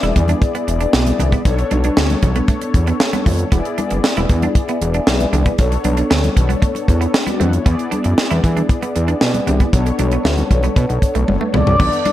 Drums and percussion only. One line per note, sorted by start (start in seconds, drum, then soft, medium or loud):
0.03 closed hi-hat soft
0.03 high conga medium
0.16 kick medium
0.16 closed hi-hat medium
0.16 low conga medium
0.28 closed hi-hat medium
0.28 high conga medium
0.42 kick loud
0.42 closed hi-hat medium
0.42 muted conga soft
0.55 closed hi-hat soft
0.55 muted conga soft
0.68 closed hi-hat medium
0.80 closed hi-hat soft
0.93 snare loud
1.06 closed hi-hat medium
1.06 high conga medium
1.19 closed hi-hat medium
1.19 high conga medium
1.19 low conga medium
1.32 kick medium
1.32 closed hi-hat medium
1.45 kick loud
1.45 closed hi-hat medium
1.45 muted conga soft
1.58 closed hi-hat soft
1.71 closed hi-hat medium
1.71 high conga medium
1.84 closed hi-hat medium
1.84 high conga soft
1.97 snare loud
1.97 muted conga soft
2.10 closed hi-hat soft
2.10 high conga medium
2.22 kick medium
2.22 closed hi-hat medium
2.22 low conga medium
2.36 closed hi-hat soft
2.36 high conga medium
2.48 kick loud
2.48 closed hi-hat medium
2.48 muted conga soft
2.61 closed hi-hat medium
2.61 muted conga soft
2.74 kick medium
2.74 closed hi-hat medium
2.87 closed hi-hat soft
3.00 snare loud
3.13 closed hi-hat medium
3.13 muted conga soft
3.13 high conga medium
3.26 kick medium
3.26 open hi-hat medium
3.26 high conga medium
3.26 low conga medium
3.39 closed hi-hat medium
3.52 kick loud
3.52 closed hi-hat medium
3.65 closed hi-hat soft
3.78 closed hi-hat medium
3.78 high conga medium
3.90 closed hi-hat medium
3.90 high conga soft
4.04 snare medium
4.04 muted conga soft
4.17 closed hi-hat soft
4.17 muted conga soft
4.17 high conga medium
4.29 kick medium
4.29 closed hi-hat medium
4.29 low conga medium
4.42 closed hi-hat soft
4.42 high conga medium
4.55 kick loud
4.55 closed hi-hat medium
4.55 muted conga soft
4.69 closed hi-hat soft
4.82 closed hi-hat medium
4.94 closed hi-hat soft
5.07 snare loud
5.20 closed hi-hat medium
5.20 muted conga soft
5.20 high conga medium
5.33 closed hi-hat medium
5.33 high conga medium
5.33 low conga medium
5.46 kick medium
5.46 closed hi-hat medium
5.58 kick loud
5.58 closed hi-hat medium
5.58 muted conga soft
5.72 closed hi-hat soft
5.72 muted conga soft
5.84 closed hi-hat medium
5.84 high conga medium
5.97 closed hi-hat medium
5.97 high conga soft
6.11 snare loud
6.11 muted conga soft
6.24 closed hi-hat soft
6.24 muted conga soft
6.24 high conga medium
6.37 kick medium
6.37 closed hi-hat medium
6.37 low conga medium
6.50 closed hi-hat soft
6.50 high conga medium
6.62 kick loud
6.62 closed hi-hat medium
6.62 muted conga soft
6.75 closed hi-hat soft
6.75 muted conga soft
6.88 kick medium
6.88 closed hi-hat medium
7.02 closed hi-hat soft
7.14 snare loud
7.27 closed hi-hat medium
7.27 muted conga soft
7.27 high conga medium
7.40 closed hi-hat medium
7.40 high conga medium
7.40 low conga medium
7.53 closed hi-hat medium
7.66 kick loud
7.66 closed hi-hat medium
7.79 closed hi-hat soft
7.92 closed hi-hat medium
7.92 high conga medium
8.04 closed hi-hat medium
8.04 high conga soft
8.18 snare loud
8.31 closed hi-hat soft
8.31 muted conga soft
8.31 high conga medium
8.44 kick medium
8.44 closed hi-hat medium
8.44 low conga medium
8.56 closed hi-hat soft
8.56 high conga medium
8.69 kick loud
8.69 closed hi-hat medium
8.82 closed hi-hat medium
8.82 muted conga soft
8.96 closed hi-hat medium
9.08 closed hi-hat soft
9.21 snare loud
9.21 muted conga soft
9.34 closed hi-hat medium
9.34 muted conga soft
9.34 high conga medium
9.47 closed hi-hat medium
9.47 high conga medium
9.47 low conga medium
9.60 kick medium
9.60 closed hi-hat soft
9.73 kick loud
9.73 closed hi-hat loud
9.86 closed hi-hat medium
9.86 muted conga soft
9.99 closed hi-hat medium
9.99 high conga medium
10.11 closed hi-hat medium
10.25 snare loud
10.25 muted conga soft
10.38 closed hi-hat soft
10.38 high conga medium
10.51 kick medium
10.51 closed hi-hat medium
10.51 low conga medium
10.63 closed hi-hat soft
10.63 high conga medium
10.76 kick loud
10.76 closed hi-hat medium
10.90 closed hi-hat medium
11.02 kick medium
11.02 closed hi-hat medium
11.15 closed hi-hat soft
11.28 high tom medium
11.28 muted conga soft
11.41 muted conga soft
11.41 high conga medium
11.54 mid tom medium
11.54 high conga medium
11.54 low conga medium
11.67 floor tom medium
11.80 kick loud
11.80 crash medium
11.80 low conga medium
11.92 closed hi-hat soft
11.92 muted conga soft
12.05 closed hi-hat medium
12.05 high conga medium